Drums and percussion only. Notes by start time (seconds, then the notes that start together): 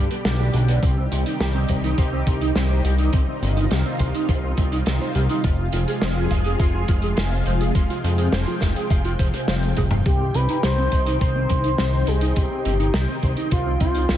0.11 closed hi-hat
0.25 snare, closed hi-hat
0.54 closed hi-hat
0.68 closed hi-hat
0.83 kick, closed hi-hat
1.12 closed hi-hat
1.26 closed hi-hat
1.40 snare, closed hi-hat
1.69 kick, closed hi-hat
1.84 closed hi-hat
1.98 kick, closed hi-hat
2.27 kick, closed hi-hat
2.42 closed hi-hat
2.56 snare, closed hi-hat
2.85 closed hi-hat
2.98 closed hi-hat
3.13 kick, closed hi-hat
3.43 closed hi-hat
3.57 closed hi-hat
3.71 snare, closed hi-hat
3.99 kick, closed hi-hat
4.15 closed hi-hat
4.29 kick, closed hi-hat
4.57 kick, closed hi-hat
4.72 closed hi-hat
4.86 snare, closed hi-hat
5.15 closed hi-hat
5.29 closed hi-hat
5.44 kick, closed hi-hat
5.72 closed hi-hat
5.88 closed hi-hat
6.02 snare, closed hi-hat
6.31 kick, closed hi-hat
6.44 closed hi-hat
6.60 kick, closed hi-hat
6.88 kick, closed hi-hat
7.02 closed hi-hat
7.17 snare, closed hi-hat
7.46 closed hi-hat
7.61 closed hi-hat
7.75 kick, closed hi-hat
7.90 closed hi-hat
8.04 closed hi-hat
8.18 closed hi-hat
8.33 snare, closed hi-hat
8.46 closed hi-hat
8.61 kick, snare, closed hi-hat
8.76 closed hi-hat
8.90 kick, closed hi-hat
9.05 closed hi-hat
9.19 kick, closed hi-hat
9.34 closed hi-hat
9.48 snare, closed hi-hat
9.63 closed hi-hat
9.77 kick, closed hi-hat, high tom
9.91 closed hi-hat, mid tom
10.06 kick, closed hi-hat
10.34 closed hi-hat
10.49 closed hi-hat
10.63 snare, closed hi-hat
10.92 kick, closed hi-hat
11.06 closed hi-hat
11.21 kick, closed hi-hat
11.50 kick, closed hi-hat
11.64 closed hi-hat
11.78 snare, closed hi-hat
12.07 closed hi-hat
12.21 closed hi-hat
12.36 kick, closed hi-hat
12.65 closed hi-hat
12.80 closed hi-hat
12.94 snare, closed hi-hat
13.23 kick, closed hi-hat
13.37 closed hi-hat
13.51 kick, closed hi-hat
13.80 kick, closed hi-hat
13.95 closed hi-hat
14.09 snare, closed hi-hat